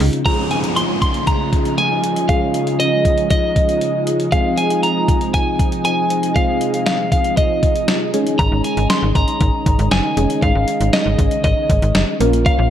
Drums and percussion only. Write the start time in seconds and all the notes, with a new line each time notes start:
0.00 open hi-hat
0.13 closed hi-hat
0.26 kick, closed hi-hat
0.51 closed hi-hat
0.64 closed hi-hat
0.77 closed hi-hat
1.02 kick, closed hi-hat
1.14 closed hi-hat
1.27 kick, closed hi-hat
1.53 kick, closed hi-hat
1.65 closed hi-hat
1.78 closed hi-hat
2.04 closed hi-hat
2.16 closed hi-hat
2.29 kick, closed hi-hat
2.54 closed hi-hat
2.67 closed hi-hat
2.80 closed hi-hat
3.05 kick, closed hi-hat
3.18 closed hi-hat
3.30 kick, closed hi-hat
3.56 kick, closed hi-hat
3.69 closed hi-hat
3.81 closed hi-hat
4.07 closed hi-hat
4.20 closed hi-hat
4.32 kick, closed hi-hat
4.57 closed hi-hat
4.70 closed hi-hat
4.83 closed hi-hat
5.08 kick, closed hi-hat
5.21 closed hi-hat
5.34 kick, closed hi-hat
5.59 kick, closed hi-hat
5.72 closed hi-hat
5.85 closed hi-hat
6.10 closed hi-hat
6.23 closed hi-hat
6.36 kick, closed hi-hat
6.61 closed hi-hat
6.74 closed hi-hat
6.86 snare, closed hi-hat
7.12 kick, closed hi-hat
7.24 closed hi-hat
7.37 kick, closed hi-hat
7.63 kick, closed hi-hat
7.76 closed hi-hat
7.88 snare, closed hi-hat
8.14 closed hi-hat
8.27 closed hi-hat
8.39 kick, closed hi-hat
8.64 closed hi-hat
8.77 closed hi-hat
8.90 snare, closed hi-hat
9.15 kick, closed hi-hat
9.28 closed hi-hat
9.41 kick, closed hi-hat
9.66 kick, closed hi-hat
9.79 closed hi-hat
9.91 snare, closed hi-hat
10.17 closed hi-hat
10.30 closed hi-hat
10.42 kick, closed hi-hat
10.68 closed hi-hat
10.81 closed hi-hat
10.93 snare, closed hi-hat
11.19 kick, closed hi-hat
11.31 closed hi-hat
11.44 kick, closed hi-hat
11.70 kick, closed hi-hat
11.82 closed hi-hat
11.95 snare, closed hi-hat
12.21 closed hi-hat
12.33 closed hi-hat
12.46 kick, closed hi-hat